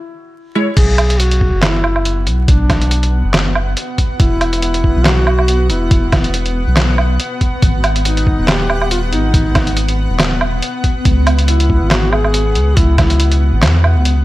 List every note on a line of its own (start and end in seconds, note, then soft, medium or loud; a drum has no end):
0.55 0.67 G#3 medium
0.55 0.67 E4 medium
0.55 0.67 C#5 loud
0.77 1.51 B1 loud
0.77 14.25 B3 medium
0.77 1.21 G#4 loud
0.77 14.25 F#5 medium
0.77 kick loud
0.77 closed hi-hat medium
0.77 crash loud
0.98 closed hi-hat medium
0.98 low woodblock medium
1.10 closed hi-hat medium
1.20 1.64 F#4 loud
1.20 closed hi-hat medium
1.31 closed hi-hat medium
1.41 kick medium
1.53 2.28 F#1 loud
1.63 2.27 E4 loud
1.63 snare loud
1.63 clap medium
1.63 closed hi-hat medium
1.63 low woodblock medium
1.84 low woodblock medium
1.96 low woodblock medium
2.05 closed hi-hat medium
2.27 2.47 B1 medium
2.27 closed hi-hat medium
2.48 3.23 B1 loud
2.48 3.30 D4 medium
2.48 kick loud
2.48 closed hi-hat medium
2.70 kick loud
2.70 snare medium
2.70 closed hi-hat medium
2.70 low woodblock medium
2.82 closed hi-hat medium
2.91 closed hi-hat medium
3.03 closed hi-hat medium
3.24 3.76 F#1 loud
3.34 snare loud
3.34 clap medium
3.34 closed hi-hat medium
3.34 low woodblock medium
3.55 low woodblock medium
3.77 closed hi-hat medium
3.98 kick medium
3.98 closed hi-hat medium
4.20 4.94 E1 loud
4.20 5.07 E4 loud
4.20 kick loud
4.20 closed hi-hat medium
4.41 closed hi-hat medium
4.41 low woodblock medium
4.53 closed hi-hat medium
4.62 closed hi-hat medium
4.74 closed hi-hat soft
4.84 kick medium
4.96 5.71 B1 loud
5.05 5.69 F#4 loud
5.05 snare loud
5.05 clap medium
5.05 closed hi-hat medium
5.05 low woodblock medium
5.27 low woodblock medium
5.39 low woodblock soft
5.48 closed hi-hat medium
5.70 5.90 E1 medium
5.70 6.30 E4 loud
5.70 closed hi-hat medium
5.91 6.66 E1 loud
5.91 kick loud
5.91 closed hi-hat medium
6.12 kick loud
6.12 snare medium
6.12 closed hi-hat medium
6.12 low woodblock medium
6.24 closed hi-hat medium
6.34 closed hi-hat medium
6.46 closed hi-hat soft
6.67 7.18 B1 loud
6.77 snare loud
6.77 clap medium
6.77 closed hi-hat medium
6.77 low woodblock medium
6.98 low woodblock medium
7.20 closed hi-hat medium
7.41 kick medium
7.41 closed hi-hat medium
7.62 8.37 G#1 loud
7.62 kick loud
7.62 closed hi-hat medium
7.84 closed hi-hat medium
7.84 low woodblock medium
7.96 closed hi-hat medium
8.05 8.50 D#4 loud
8.05 closed hi-hat medium
8.17 closed hi-hat soft
8.27 kick medium
8.39 9.14 D#1 loud
8.48 8.90 G4 loud
8.48 snare loud
8.48 clap medium
8.48 closed hi-hat medium
8.48 low woodblock medium
8.70 low woodblock medium
8.82 low woodblock medium
8.91 9.01 F4 loud
8.91 closed hi-hat medium
9.12 9.32 G#1 medium
9.12 9.94 D#4 medium
9.12 closed hi-hat medium
9.34 10.09 G#1 loud
9.34 kick loud
9.34 closed hi-hat medium
9.55 kick loud
9.55 snare medium
9.55 closed hi-hat medium
9.55 low woodblock medium
9.67 closed hi-hat medium
9.77 closed hi-hat medium
9.89 closed hi-hat medium
10.10 10.61 D#1 loud
10.20 snare loud
10.20 clap medium
10.20 closed hi-hat medium
10.20 low woodblock medium
10.41 low woodblock medium
10.62 closed hi-hat medium
10.84 kick medium
10.84 closed hi-hat medium
11.05 11.80 C#2 loud
11.05 kick loud
11.05 closed hi-hat medium
11.27 closed hi-hat medium
11.27 low woodblock medium
11.39 closed hi-hat medium
11.48 11.93 E4 medium
11.48 closed hi-hat medium
11.60 closed hi-hat medium
11.70 kick medium
11.82 12.57 G#1 loud
11.91 12.14 F#4 loud
11.91 snare loud
11.91 clap medium
11.91 closed hi-hat medium
11.91 low woodblock medium
12.13 12.79 G#4 loud
12.13 low woodblock medium
12.24 low woodblock medium
12.34 closed hi-hat medium
12.55 12.75 C#2 medium
12.55 closed hi-hat medium
12.77 13.52 C#2 loud
12.77 12.98 E4 loud
12.77 kick loud
12.77 closed hi-hat medium
12.98 13.59 E4 medium
12.98 kick loud
12.98 snare medium
12.98 closed hi-hat medium
12.98 low woodblock medium
13.10 closed hi-hat medium
13.20 closed hi-hat medium
13.32 closed hi-hat medium
13.53 13.64 G#1 loud
13.62 13.97 E2 loud
13.62 snare loud
13.62 clap medium
13.62 closed hi-hat medium
13.62 low woodblock medium
13.84 low woodblock medium
13.96 14.25 C#2 medium
14.05 closed hi-hat medium